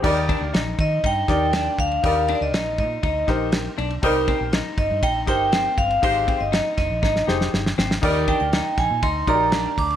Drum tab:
CC |x---------------|----------------|----------------|----------------|
RD |-xx-x-x-x-x-x-xx|x-x-x-x-x-x-x-xx|x-x-x-x-x-x-x-xx|x-x-x-x---------|
HH |----------------|----------------|----------------|----------------|
SD |----o-----o-o---|----o-----o-o---|----o-----o-o---|----o-o-oooooooo|
BD |o-o---o-o-o---o-|o-----o-o-o-----|o-o---o-o-o---o-|o-o---o-o-------|

CC |x---------------|
RD |--x-x-x-x-x-x-xx|
HH |--------------o-|
SD |----o-o-----o---|
BD |o-o---o-o-o---o-|